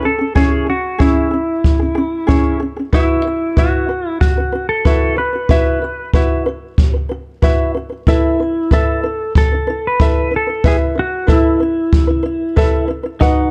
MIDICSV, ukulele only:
0, 0, Header, 1, 2, 480
1, 0, Start_track
1, 0, Tempo, 642398
1, 268, Time_signature, 4, 2, 24, 8
1, 10092, End_track
2, 0, Start_track
2, 0, Title_t, "Ukulele"
2, 0, Program_c, 0, 24
2, 18, Note_on_c, 0, 68, 47
2, 41, Note_on_c, 0, 61, 49
2, 130, Note_off_c, 0, 68, 0
2, 139, Note_on_c, 0, 68, 42
2, 148, Note_off_c, 0, 61, 0
2, 157, Note_on_c, 0, 61, 47
2, 252, Note_off_c, 0, 68, 0
2, 257, Note_off_c, 0, 61, 0
2, 261, Note_on_c, 0, 68, 64
2, 266, Note_on_c, 0, 61, 69
2, 271, Note_on_c, 0, 64, 74
2, 274, Note_on_c, 0, 73, 72
2, 489, Note_off_c, 0, 68, 0
2, 498, Note_on_c, 0, 68, 45
2, 507, Note_off_c, 0, 61, 0
2, 510, Note_off_c, 0, 64, 0
2, 512, Note_off_c, 0, 73, 0
2, 519, Note_on_c, 0, 61, 51
2, 695, Note_off_c, 0, 68, 0
2, 706, Note_off_c, 0, 61, 0
2, 736, Note_on_c, 0, 68, 66
2, 742, Note_on_c, 0, 61, 68
2, 747, Note_on_c, 0, 64, 67
2, 750, Note_on_c, 0, 73, 67
2, 968, Note_off_c, 0, 68, 0
2, 977, Note_on_c, 0, 68, 50
2, 986, Note_off_c, 0, 61, 0
2, 988, Note_off_c, 0, 64, 0
2, 990, Note_off_c, 0, 73, 0
2, 998, Note_on_c, 0, 61, 56
2, 1175, Note_off_c, 0, 68, 0
2, 1186, Note_off_c, 0, 61, 0
2, 1340, Note_on_c, 0, 68, 49
2, 1360, Note_on_c, 0, 61, 49
2, 1447, Note_off_c, 0, 68, 0
2, 1456, Note_on_c, 0, 68, 62
2, 1468, Note_off_c, 0, 61, 0
2, 1477, Note_on_c, 0, 61, 63
2, 1655, Note_off_c, 0, 68, 0
2, 1665, Note_off_c, 0, 61, 0
2, 1695, Note_on_c, 0, 68, 73
2, 1701, Note_on_c, 0, 61, 67
2, 1705, Note_on_c, 0, 64, 71
2, 1707, Note_on_c, 0, 73, 77
2, 1932, Note_off_c, 0, 68, 0
2, 1941, Note_on_c, 0, 68, 56
2, 1946, Note_off_c, 0, 61, 0
2, 1947, Note_off_c, 0, 64, 0
2, 1949, Note_off_c, 0, 73, 0
2, 1962, Note_on_c, 0, 61, 50
2, 2057, Note_off_c, 0, 68, 0
2, 2066, Note_on_c, 0, 68, 38
2, 2076, Note_off_c, 0, 61, 0
2, 2088, Note_on_c, 0, 61, 49
2, 2183, Note_off_c, 0, 68, 0
2, 2186, Note_on_c, 0, 71, 63
2, 2190, Note_off_c, 0, 61, 0
2, 2193, Note_on_c, 0, 66, 66
2, 2201, Note_on_c, 0, 64, 81
2, 2202, Note_on_c, 0, 76, 83
2, 2415, Note_off_c, 0, 71, 0
2, 2421, Note_off_c, 0, 64, 0
2, 2424, Note_on_c, 0, 71, 47
2, 2432, Note_off_c, 0, 66, 0
2, 2436, Note_off_c, 0, 76, 0
2, 2619, Note_off_c, 0, 71, 0
2, 2662, Note_on_c, 0, 71, 55
2, 2670, Note_on_c, 0, 66, 63
2, 2674, Note_on_c, 0, 64, 70
2, 2678, Note_on_c, 0, 76, 69
2, 2896, Note_off_c, 0, 71, 0
2, 2902, Note_off_c, 0, 76, 0
2, 2905, Note_on_c, 0, 71, 53
2, 2910, Note_off_c, 0, 66, 0
2, 2912, Note_off_c, 0, 64, 0
2, 2920, Note_on_c, 0, 66, 61
2, 3099, Note_off_c, 0, 71, 0
2, 3107, Note_off_c, 0, 66, 0
2, 3268, Note_on_c, 0, 71, 37
2, 3288, Note_on_c, 0, 66, 49
2, 3371, Note_off_c, 0, 71, 0
2, 3380, Note_on_c, 0, 71, 50
2, 3393, Note_off_c, 0, 66, 0
2, 3402, Note_on_c, 0, 66, 56
2, 3577, Note_off_c, 0, 71, 0
2, 3588, Note_off_c, 0, 66, 0
2, 3623, Note_on_c, 0, 71, 69
2, 3630, Note_on_c, 0, 66, 74
2, 3633, Note_on_c, 0, 64, 72
2, 3641, Note_on_c, 0, 76, 68
2, 3849, Note_off_c, 0, 71, 0
2, 3855, Note_off_c, 0, 76, 0
2, 3858, Note_on_c, 0, 71, 46
2, 3870, Note_off_c, 0, 66, 0
2, 3872, Note_off_c, 0, 64, 0
2, 3972, Note_off_c, 0, 71, 0
2, 3981, Note_on_c, 0, 71, 41
2, 4001, Note_on_c, 0, 66, 45
2, 4093, Note_off_c, 0, 71, 0
2, 4099, Note_off_c, 0, 66, 0
2, 4102, Note_on_c, 0, 71, 80
2, 4108, Note_on_c, 0, 66, 61
2, 4113, Note_on_c, 0, 64, 71
2, 4115, Note_on_c, 0, 76, 81
2, 4337, Note_off_c, 0, 71, 0
2, 4343, Note_off_c, 0, 64, 0
2, 4346, Note_on_c, 0, 71, 45
2, 4349, Note_off_c, 0, 66, 0
2, 4353, Note_off_c, 0, 76, 0
2, 4364, Note_on_c, 0, 66, 57
2, 4541, Note_off_c, 0, 71, 0
2, 4549, Note_off_c, 0, 66, 0
2, 4585, Note_on_c, 0, 71, 63
2, 4589, Note_on_c, 0, 66, 73
2, 4594, Note_on_c, 0, 64, 78
2, 4598, Note_on_c, 0, 76, 72
2, 4817, Note_off_c, 0, 71, 0
2, 4823, Note_off_c, 0, 76, 0
2, 4826, Note_on_c, 0, 71, 65
2, 4830, Note_off_c, 0, 66, 0
2, 4833, Note_off_c, 0, 64, 0
2, 4845, Note_on_c, 0, 66, 64
2, 5021, Note_off_c, 0, 71, 0
2, 5030, Note_off_c, 0, 66, 0
2, 5181, Note_on_c, 0, 71, 42
2, 5203, Note_on_c, 0, 66, 44
2, 5289, Note_off_c, 0, 71, 0
2, 5298, Note_on_c, 0, 71, 54
2, 5307, Note_off_c, 0, 66, 0
2, 5316, Note_on_c, 0, 66, 66
2, 5496, Note_off_c, 0, 71, 0
2, 5505, Note_off_c, 0, 66, 0
2, 5545, Note_on_c, 0, 71, 65
2, 5548, Note_on_c, 0, 66, 62
2, 5555, Note_on_c, 0, 64, 73
2, 5557, Note_on_c, 0, 76, 79
2, 5778, Note_off_c, 0, 71, 0
2, 5783, Note_off_c, 0, 76, 0
2, 5786, Note_on_c, 0, 71, 49
2, 5790, Note_off_c, 0, 66, 0
2, 5793, Note_off_c, 0, 64, 0
2, 5806, Note_on_c, 0, 66, 58
2, 5890, Note_off_c, 0, 71, 0
2, 5899, Note_on_c, 0, 71, 39
2, 5911, Note_off_c, 0, 66, 0
2, 5920, Note_on_c, 0, 66, 40
2, 6023, Note_off_c, 0, 71, 0
2, 6032, Note_on_c, 0, 71, 67
2, 6033, Note_on_c, 0, 64, 70
2, 6036, Note_off_c, 0, 66, 0
2, 6040, Note_on_c, 0, 69, 68
2, 6042, Note_on_c, 0, 76, 79
2, 6266, Note_off_c, 0, 71, 0
2, 6272, Note_off_c, 0, 64, 0
2, 6275, Note_on_c, 0, 71, 43
2, 6276, Note_off_c, 0, 69, 0
2, 6277, Note_off_c, 0, 76, 0
2, 6295, Note_on_c, 0, 64, 54
2, 6465, Note_off_c, 0, 71, 0
2, 6475, Note_off_c, 0, 64, 0
2, 6513, Note_on_c, 0, 71, 62
2, 6518, Note_on_c, 0, 64, 54
2, 6520, Note_on_c, 0, 69, 66
2, 6524, Note_on_c, 0, 76, 73
2, 6742, Note_off_c, 0, 71, 0
2, 6748, Note_off_c, 0, 76, 0
2, 6751, Note_on_c, 0, 71, 53
2, 6755, Note_off_c, 0, 64, 0
2, 6756, Note_off_c, 0, 69, 0
2, 6769, Note_on_c, 0, 64, 49
2, 6943, Note_off_c, 0, 71, 0
2, 6952, Note_off_c, 0, 64, 0
2, 7111, Note_on_c, 0, 71, 35
2, 7131, Note_on_c, 0, 64, 46
2, 7217, Note_off_c, 0, 71, 0
2, 7226, Note_on_c, 0, 71, 56
2, 7237, Note_off_c, 0, 64, 0
2, 7246, Note_on_c, 0, 64, 63
2, 7421, Note_off_c, 0, 71, 0
2, 7431, Note_off_c, 0, 64, 0
2, 7469, Note_on_c, 0, 71, 69
2, 7476, Note_on_c, 0, 64, 76
2, 7481, Note_on_c, 0, 69, 71
2, 7483, Note_on_c, 0, 76, 74
2, 7696, Note_off_c, 0, 71, 0
2, 7702, Note_off_c, 0, 76, 0
2, 7705, Note_on_c, 0, 71, 48
2, 7714, Note_off_c, 0, 64, 0
2, 7716, Note_off_c, 0, 69, 0
2, 7726, Note_on_c, 0, 64, 55
2, 7812, Note_off_c, 0, 71, 0
2, 7821, Note_on_c, 0, 71, 37
2, 7833, Note_off_c, 0, 64, 0
2, 7842, Note_on_c, 0, 64, 44
2, 7940, Note_off_c, 0, 71, 0
2, 7946, Note_off_c, 0, 64, 0
2, 7949, Note_on_c, 0, 71, 79
2, 7955, Note_on_c, 0, 64, 70
2, 7961, Note_on_c, 0, 76, 78
2, 8175, Note_off_c, 0, 71, 0
2, 8184, Note_on_c, 0, 71, 46
2, 8193, Note_off_c, 0, 64, 0
2, 8196, Note_off_c, 0, 76, 0
2, 8206, Note_on_c, 0, 64, 50
2, 8380, Note_off_c, 0, 71, 0
2, 8391, Note_off_c, 0, 64, 0
2, 8419, Note_on_c, 0, 71, 62
2, 8426, Note_on_c, 0, 64, 75
2, 8430, Note_on_c, 0, 69, 68
2, 8435, Note_on_c, 0, 76, 80
2, 8659, Note_off_c, 0, 71, 0
2, 8665, Note_off_c, 0, 76, 0
2, 8668, Note_on_c, 0, 71, 51
2, 8669, Note_off_c, 0, 64, 0
2, 8671, Note_off_c, 0, 69, 0
2, 8687, Note_on_c, 0, 64, 60
2, 8862, Note_off_c, 0, 71, 0
2, 8871, Note_off_c, 0, 64, 0
2, 9021, Note_on_c, 0, 71, 54
2, 9043, Note_on_c, 0, 64, 51
2, 9128, Note_off_c, 0, 71, 0
2, 9137, Note_on_c, 0, 71, 63
2, 9149, Note_off_c, 0, 64, 0
2, 9158, Note_on_c, 0, 64, 60
2, 9336, Note_off_c, 0, 71, 0
2, 9347, Note_off_c, 0, 64, 0
2, 9386, Note_on_c, 0, 71, 75
2, 9389, Note_on_c, 0, 64, 70
2, 9396, Note_on_c, 0, 69, 85
2, 9401, Note_on_c, 0, 76, 82
2, 9614, Note_off_c, 0, 71, 0
2, 9620, Note_off_c, 0, 76, 0
2, 9623, Note_on_c, 0, 71, 62
2, 9631, Note_off_c, 0, 64, 0
2, 9634, Note_off_c, 0, 69, 0
2, 9642, Note_on_c, 0, 64, 58
2, 9729, Note_off_c, 0, 71, 0
2, 9738, Note_on_c, 0, 71, 43
2, 9747, Note_off_c, 0, 64, 0
2, 9756, Note_on_c, 0, 64, 51
2, 9862, Note_on_c, 0, 75, 73
2, 9865, Note_off_c, 0, 71, 0
2, 9870, Note_on_c, 0, 66, 72
2, 9872, Note_off_c, 0, 64, 0
2, 9875, Note_on_c, 0, 71, 74
2, 9876, Note_on_c, 0, 78, 83
2, 10092, Note_off_c, 0, 66, 0
2, 10092, Note_off_c, 0, 71, 0
2, 10092, Note_off_c, 0, 75, 0
2, 10092, Note_off_c, 0, 78, 0
2, 10092, End_track
0, 0, End_of_file